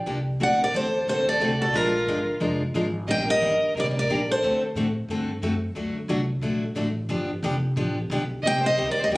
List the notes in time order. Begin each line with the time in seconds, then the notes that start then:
0.06 C2 D3 F3 A#3 D4 G4
0.40 D2 D3 A3 C4 F#4 A4 D5 F#5
0.62 A#4 D5
0.74 D#2 D3 A3 C4 F#4 A4 C5
1.07 D2 D3 A3 C4 F#4 A4 C5
1.27 A4 D5
1.40 C2 D3 A3 C4 F#4 A4
1.60 F#4 A4
1.73 A#1 F3 G#3 D4 F4 A#4
2.07 G1 F3 G#3 D4 F4 A#4
2.40 F1 F3 G#3 D4 F4 A#4
2.74 G#1 F3 G#3 D4 F4 A#4
3.08 A#1 D#3 G3 A#3 D4 G4 D#5 G5
3.27 A#4 D#5
3.41 G1 D#3 G3 A#3 D4 G4
3.75 C2 D#3 G3 A#3 D4 G4 A#4
3.80 D5
3.96 A#4 D5
4.08 A#1 D#3 G3 A#3 D4 G4
4.29 A4 C5
4.42 D2 D3 A3 C4 F#4 A4
4.75 A2 D3 A3 C4 F#4 A4
5.09 G2 D3 A3 C4 F#4 A4
5.42 F#2 D3 A3 C4 F#4 A4
5.75 D2 D3 F#3 A3 D4 F#4
6.08 C2 D3 F#3 A3 D4 F#4
6.41 A#1 D3 F#3 A3 D4 F#4
6.75 A1 D3 F#3 A3 D4 F#4
7.09 G1 D3 F3 B3 D4 G4
7.29 muted upright bass stroke
7.43 F1 D3 F3 B3 D4 G4
7.76 A1 D3 F3 B3 D4 G4
8.10 B1 D3 F3 B3 D4 G4
8.43 C2 C3 G3 A#3 D#4 G4 D#5
8.47 G5
8.63 C5 D#5
8.76 D2 C3 G3 A#3 D#4 G4
8.88 A#4 D5
9.00 C5
9.04 D#5
9.09 D#2 C3 G3 A#3 D#4 G4 D#5